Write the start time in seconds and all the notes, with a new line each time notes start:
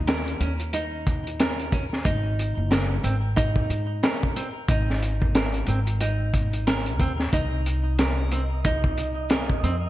Already playing: D#2
0.07 A#4, snare, closed hi-hat
0.28 closed hi-hat
0.40 D#2 C#4, closed hi-hat
0.60 closed hi-hat
0.73 D#4, closed hi-hat
1.07 kick, closed hi-hat
1.27 closed hi-hat
1.40 A#4, snare, closed hi-hat
1.60 closed hi-hat
1.72 C#4, kick, closed hi-hat
1.93 snare
2.05 G#1 D#4, kick, closed hi-hat
2.39 closed hi-hat
2.57 F#1
2.71 A#4, snare, closed hi-hat
3.03 G#1 C4, closed hi-hat
3.36 D#4, kick, closed hi-hat
3.56 kick
3.70 G#2, closed hi-hat
4.03 A#4, snare, closed hi-hat
4.23 kick
4.36 C4, closed hi-hat
4.68 G#1 D#4, kick, closed hi-hat
4.90 snare
5.03 closed hi-hat
5.22 kick
5.35 A#4, snare, closed hi-hat
5.54 closed hi-hat
5.67 G#1 C4, closed hi-hat
5.87 closed hi-hat
6.00 D#4, closed hi-hat
6.34 kick, closed hi-hat
6.53 closed hi-hat
6.67 A#4, snare, closed hi-hat
6.86 closed hi-hat
7.00 D#2 C4, kick, closed hi-hat
7.20 snare
7.33 C2 D#4 D#5, kick, closed hi-hat
7.66 closed hi-hat
7.99 A#4, snare, closed hi-hat, maracas
8.18 triangle
8.31 C4, closed hi-hat
8.65 D#4, kick, closed hi-hat
8.84 kick
8.98 closed hi-hat
9.29 A#4, snare, closed hi-hat, maracas
9.50 kick
9.63 F2 C4, closed hi-hat